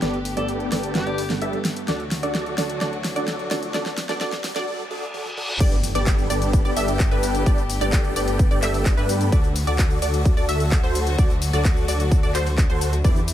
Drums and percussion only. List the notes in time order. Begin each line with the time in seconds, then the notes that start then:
0.02 snare, closed hi-hat
0.14 closed hi-hat
0.25 open hi-hat
0.37 closed hi-hat
0.48 closed hi-hat
0.60 closed hi-hat
0.72 snare, open hi-hat
0.83 closed hi-hat
0.95 snare, closed hi-hat
1.07 closed hi-hat
1.18 open hi-hat
1.30 snare, open hi-hat
1.42 closed hi-hat
1.53 closed hi-hat
1.65 snare, open hi-hat
1.76 closed hi-hat
1.88 snare, closed hi-hat
2.00 closed hi-hat
2.11 snare, open hi-hat
2.23 closed hi-hat
2.35 snare, closed hi-hat
2.46 closed hi-hat
2.58 snare, open hi-hat
2.70 closed hi-hat
2.81 snare, closed hi-hat
2.93 closed hi-hat
3.04 snare, open hi-hat
3.16 closed hi-hat
3.28 snare, closed hi-hat
3.39 closed hi-hat
3.51 snare, open hi-hat
3.63 closed hi-hat
3.74 snare, closed hi-hat
3.86 snare, closed hi-hat
3.98 snare, open hi-hat
4.09 snare, closed hi-hat
4.21 snare, closed hi-hat
4.32 snare, closed hi-hat
4.44 snare, open hi-hat
4.56 snare, closed hi-hat
5.14 high tom
5.25 high tom
5.37 mid tom
5.49 mid tom
5.60 kick, closed hi-hat, crash, shaker
5.72 closed hi-hat, shaker
5.84 open hi-hat, shaker
5.95 closed hi-hat, shaker
6.07 kick, clap, closed hi-hat, shaker
6.19 closed hi-hat, shaker
6.30 open hi-hat, shaker
6.42 closed hi-hat, shaker
6.53 kick, closed hi-hat, shaker
6.65 closed hi-hat, shaker
6.77 open hi-hat, shaker
6.88 closed hi-hat, shaker
7.00 kick, clap, closed hi-hat, shaker
7.11 closed hi-hat, shaker
7.23 open hi-hat, shaker
7.35 closed hi-hat, shaker
7.46 kick, closed hi-hat, shaker
7.58 closed hi-hat, shaker
7.70 open hi-hat, shaker
7.81 closed hi-hat, shaker
7.93 kick, clap, closed hi-hat, shaker
8.04 closed hi-hat, shaker
8.16 open hi-hat, shaker
8.28 closed hi-hat, shaker
8.39 kick, closed hi-hat, shaker
8.51 closed hi-hat, shaker
8.62 clap, open hi-hat, shaker
8.74 open hi-hat, shaker
8.86 kick, clap, closed hi-hat, shaker
8.98 closed hi-hat, shaker
9.09 open hi-hat, shaker
9.21 closed hi-hat, shaker
9.32 kick, closed hi-hat, shaker
9.44 closed hi-hat, shaker
9.56 open hi-hat, shaker
9.67 closed hi-hat, shaker
9.79 kick, clap, closed hi-hat, shaker
9.91 closed hi-hat, shaker
10.02 open hi-hat, shaker
10.14 closed hi-hat, shaker
10.25 kick, closed hi-hat, shaker
10.37 closed hi-hat, shaker
10.49 open hi-hat, shaker
10.60 closed hi-hat, shaker
10.72 kick, clap, closed hi-hat, shaker
10.84 closed hi-hat, shaker
10.95 open hi-hat, shaker
11.07 closed hi-hat, shaker
11.18 kick, closed hi-hat, shaker
11.30 closed hi-hat, shaker
11.42 open hi-hat, shaker
11.53 closed hi-hat, shaker
11.65 kick, clap, closed hi-hat, shaker
11.77 closed hi-hat, shaker
11.88 open hi-hat, shaker
12.00 closed hi-hat, shaker
12.12 kick, closed hi-hat, shaker
12.23 closed hi-hat, shaker
12.35 clap, open hi-hat, shaker
12.46 open hi-hat, shaker
12.58 kick, clap, closed hi-hat, shaker
12.70 closed hi-hat, shaker
12.81 open hi-hat, shaker
12.93 closed hi-hat, shaker
13.04 kick, closed hi-hat, shaker
13.16 closed hi-hat, shaker
13.28 open hi-hat, shaker